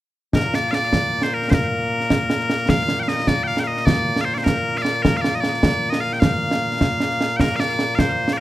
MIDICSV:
0, 0, Header, 1, 3, 480
1, 0, Start_track
1, 0, Key_signature, -2, "major"
1, 0, Tempo, 392157
1, 414, Time_signature, 6, 3, 24, 8
1, 10283, End_track
2, 0, Start_track
2, 0, Title_t, "Bagpipes"
2, 0, Program_c, 0, 109
2, 428, Note_on_c, 0, 46, 89
2, 428, Note_on_c, 0, 58, 89
2, 428, Note_on_c, 0, 70, 93
2, 671, Note_off_c, 0, 70, 0
2, 671, Note_on_c, 0, 74, 87
2, 867, Note_off_c, 0, 74, 0
2, 867, Note_on_c, 0, 77, 107
2, 908, Note_off_c, 0, 77, 0
2, 908, Note_on_c, 0, 74, 107
2, 1506, Note_off_c, 0, 74, 0
2, 1506, Note_on_c, 0, 72, 79
2, 1640, Note_off_c, 0, 72, 0
2, 1640, Note_on_c, 0, 70, 75
2, 1837, Note_off_c, 0, 70, 0
2, 1837, Note_on_c, 0, 72, 78
2, 1886, Note_off_c, 0, 72, 0
2, 1886, Note_on_c, 0, 70, 78
2, 3298, Note_off_c, 0, 70, 0
2, 3298, Note_on_c, 0, 77, 113
2, 3669, Note_off_c, 0, 77, 0
2, 3669, Note_on_c, 0, 79, 71
2, 3710, Note_off_c, 0, 79, 0
2, 3710, Note_on_c, 0, 77, 71
2, 3773, Note_off_c, 0, 77, 0
2, 3773, Note_on_c, 0, 75, 104
2, 4011, Note_off_c, 0, 75, 0
2, 4011, Note_on_c, 0, 74, 94
2, 4204, Note_off_c, 0, 74, 0
2, 4204, Note_on_c, 0, 79, 95
2, 4255, Note_off_c, 0, 79, 0
2, 4255, Note_on_c, 0, 77, 95
2, 4402, Note_off_c, 0, 77, 0
2, 4402, Note_on_c, 0, 79, 63
2, 4457, Note_off_c, 0, 79, 0
2, 4457, Note_on_c, 0, 77, 63
2, 4494, Note_off_c, 0, 77, 0
2, 4494, Note_on_c, 0, 75, 89
2, 4718, Note_off_c, 0, 75, 0
2, 4718, Note_on_c, 0, 74, 94
2, 5151, Note_off_c, 0, 74, 0
2, 5151, Note_on_c, 0, 77, 93
2, 5197, Note_off_c, 0, 77, 0
2, 5197, Note_on_c, 0, 72, 93
2, 5314, Note_off_c, 0, 72, 0
2, 5314, Note_on_c, 0, 74, 53
2, 5359, Note_off_c, 0, 74, 0
2, 5359, Note_on_c, 0, 72, 53
2, 5435, Note_off_c, 0, 72, 0
2, 5435, Note_on_c, 0, 70, 89
2, 5845, Note_off_c, 0, 70, 0
2, 5845, Note_on_c, 0, 77, 90
2, 5900, Note_off_c, 0, 77, 0
2, 5900, Note_on_c, 0, 74, 90
2, 6149, Note_off_c, 0, 74, 0
2, 6149, Note_on_c, 0, 70, 86
2, 6326, Note_off_c, 0, 70, 0
2, 6326, Note_on_c, 0, 77, 81
2, 6379, Note_off_c, 0, 77, 0
2, 6379, Note_on_c, 0, 74, 81
2, 6550, Note_off_c, 0, 74, 0
2, 6550, Note_on_c, 0, 75, 69
2, 6614, Note_off_c, 0, 75, 0
2, 6614, Note_on_c, 0, 74, 91
2, 7221, Note_off_c, 0, 74, 0
2, 7221, Note_on_c, 0, 75, 77
2, 7347, Note_off_c, 0, 75, 0
2, 7347, Note_on_c, 0, 77, 86
2, 7504, Note_off_c, 0, 77, 0
2, 7504, Note_on_c, 0, 79, 70
2, 7588, Note_off_c, 0, 79, 0
2, 7588, Note_on_c, 0, 77, 89
2, 9017, Note_off_c, 0, 77, 0
2, 9017, Note_on_c, 0, 79, 90
2, 9064, Note_off_c, 0, 79, 0
2, 9064, Note_on_c, 0, 70, 90
2, 9252, Note_off_c, 0, 70, 0
2, 9252, Note_on_c, 0, 77, 98
2, 9300, Note_off_c, 0, 77, 0
2, 9300, Note_on_c, 0, 74, 98
2, 9732, Note_off_c, 0, 74, 0
2, 9732, Note_on_c, 0, 77, 89
2, 9780, Note_off_c, 0, 77, 0
2, 9780, Note_on_c, 0, 72, 89
2, 10196, Note_off_c, 0, 72, 0
2, 10196, Note_on_c, 0, 74, 79
2, 10250, Note_off_c, 0, 74, 0
2, 10283, Note_off_c, 0, 46, 0
2, 10283, Note_off_c, 0, 58, 0
2, 10283, End_track
3, 0, Start_track
3, 0, Title_t, "Drums"
3, 408, Note_on_c, 9, 35, 58
3, 408, Note_on_c, 9, 38, 91
3, 530, Note_off_c, 9, 35, 0
3, 530, Note_off_c, 9, 38, 0
3, 657, Note_on_c, 9, 38, 70
3, 779, Note_off_c, 9, 38, 0
3, 892, Note_on_c, 9, 38, 67
3, 1012, Note_off_c, 9, 38, 0
3, 1012, Note_on_c, 9, 38, 27
3, 1134, Note_off_c, 9, 38, 0
3, 1134, Note_on_c, 9, 35, 52
3, 1134, Note_on_c, 9, 38, 83
3, 1256, Note_off_c, 9, 35, 0
3, 1256, Note_off_c, 9, 38, 0
3, 1490, Note_on_c, 9, 38, 72
3, 1612, Note_off_c, 9, 38, 0
3, 1740, Note_on_c, 9, 38, 29
3, 1853, Note_off_c, 9, 38, 0
3, 1853, Note_on_c, 9, 35, 59
3, 1853, Note_on_c, 9, 38, 96
3, 1975, Note_off_c, 9, 35, 0
3, 1975, Note_off_c, 9, 38, 0
3, 2453, Note_on_c, 9, 38, 27
3, 2575, Note_off_c, 9, 38, 0
3, 2575, Note_on_c, 9, 35, 49
3, 2575, Note_on_c, 9, 38, 96
3, 2697, Note_off_c, 9, 35, 0
3, 2697, Note_off_c, 9, 38, 0
3, 2813, Note_on_c, 9, 38, 79
3, 2935, Note_off_c, 9, 38, 0
3, 2939, Note_on_c, 9, 38, 28
3, 3055, Note_off_c, 9, 38, 0
3, 3055, Note_on_c, 9, 38, 73
3, 3177, Note_off_c, 9, 38, 0
3, 3290, Note_on_c, 9, 35, 61
3, 3290, Note_on_c, 9, 38, 99
3, 3412, Note_off_c, 9, 35, 0
3, 3412, Note_off_c, 9, 38, 0
3, 3530, Note_on_c, 9, 38, 68
3, 3653, Note_off_c, 9, 38, 0
3, 3768, Note_on_c, 9, 38, 67
3, 3888, Note_off_c, 9, 38, 0
3, 3888, Note_on_c, 9, 38, 27
3, 4006, Note_off_c, 9, 38, 0
3, 4006, Note_on_c, 9, 35, 52
3, 4006, Note_on_c, 9, 38, 87
3, 4129, Note_off_c, 9, 35, 0
3, 4129, Note_off_c, 9, 38, 0
3, 4369, Note_on_c, 9, 38, 67
3, 4491, Note_off_c, 9, 38, 0
3, 4613, Note_on_c, 9, 38, 28
3, 4733, Note_off_c, 9, 38, 0
3, 4733, Note_on_c, 9, 35, 61
3, 4733, Note_on_c, 9, 38, 94
3, 4855, Note_off_c, 9, 35, 0
3, 4855, Note_off_c, 9, 38, 0
3, 5095, Note_on_c, 9, 38, 68
3, 5217, Note_off_c, 9, 38, 0
3, 5339, Note_on_c, 9, 38, 29
3, 5461, Note_off_c, 9, 38, 0
3, 5462, Note_on_c, 9, 35, 48
3, 5462, Note_on_c, 9, 38, 93
3, 5584, Note_off_c, 9, 35, 0
3, 5584, Note_off_c, 9, 38, 0
3, 5820, Note_on_c, 9, 38, 29
3, 5935, Note_off_c, 9, 38, 0
3, 5935, Note_on_c, 9, 38, 75
3, 6057, Note_off_c, 9, 38, 0
3, 6178, Note_on_c, 9, 35, 64
3, 6178, Note_on_c, 9, 38, 91
3, 6301, Note_off_c, 9, 35, 0
3, 6301, Note_off_c, 9, 38, 0
3, 6419, Note_on_c, 9, 38, 82
3, 6542, Note_off_c, 9, 38, 0
3, 6653, Note_on_c, 9, 38, 74
3, 6776, Note_off_c, 9, 38, 0
3, 6777, Note_on_c, 9, 38, 28
3, 6892, Note_off_c, 9, 38, 0
3, 6892, Note_on_c, 9, 35, 57
3, 6892, Note_on_c, 9, 38, 100
3, 7014, Note_off_c, 9, 35, 0
3, 7014, Note_off_c, 9, 38, 0
3, 7254, Note_on_c, 9, 38, 73
3, 7377, Note_off_c, 9, 38, 0
3, 7497, Note_on_c, 9, 38, 29
3, 7613, Note_off_c, 9, 38, 0
3, 7613, Note_on_c, 9, 35, 69
3, 7613, Note_on_c, 9, 38, 107
3, 7735, Note_off_c, 9, 35, 0
3, 7735, Note_off_c, 9, 38, 0
3, 7972, Note_on_c, 9, 38, 74
3, 8094, Note_off_c, 9, 38, 0
3, 8214, Note_on_c, 9, 38, 30
3, 8335, Note_off_c, 9, 38, 0
3, 8335, Note_on_c, 9, 35, 49
3, 8335, Note_on_c, 9, 38, 85
3, 8458, Note_off_c, 9, 35, 0
3, 8458, Note_off_c, 9, 38, 0
3, 8572, Note_on_c, 9, 38, 74
3, 8695, Note_off_c, 9, 38, 0
3, 8700, Note_on_c, 9, 38, 26
3, 8821, Note_off_c, 9, 38, 0
3, 8821, Note_on_c, 9, 38, 76
3, 8943, Note_off_c, 9, 38, 0
3, 9052, Note_on_c, 9, 35, 57
3, 9052, Note_on_c, 9, 38, 93
3, 9174, Note_off_c, 9, 35, 0
3, 9174, Note_off_c, 9, 38, 0
3, 9298, Note_on_c, 9, 38, 73
3, 9418, Note_off_c, 9, 38, 0
3, 9418, Note_on_c, 9, 38, 28
3, 9534, Note_off_c, 9, 38, 0
3, 9534, Note_on_c, 9, 38, 77
3, 9657, Note_off_c, 9, 38, 0
3, 9775, Note_on_c, 9, 35, 52
3, 9775, Note_on_c, 9, 38, 94
3, 9898, Note_off_c, 9, 35, 0
3, 9898, Note_off_c, 9, 38, 0
3, 10132, Note_on_c, 9, 38, 76
3, 10254, Note_off_c, 9, 38, 0
3, 10283, End_track
0, 0, End_of_file